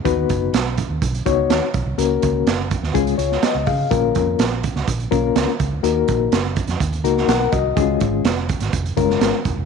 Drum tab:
HH |x-x-x-x-xxx-x-x-|x-x-x-x-xxx-x-o-|x-x-x-x-xxx-x-x-|x-x-x-xxxxx-x-x-|
SD |----o-------o---|----o--o---oo---|----o--o----o---|----o--o---oo---|
BD |o-o---o-o-o---o-|--o---o-o-----o-|o-o---o-o-o---o-|--o---o-o-----o-|

HH |x-x-x-xxxxx-x-x-|
SD |----o--o---oo---|
BD |o-o---o-o-o---o-|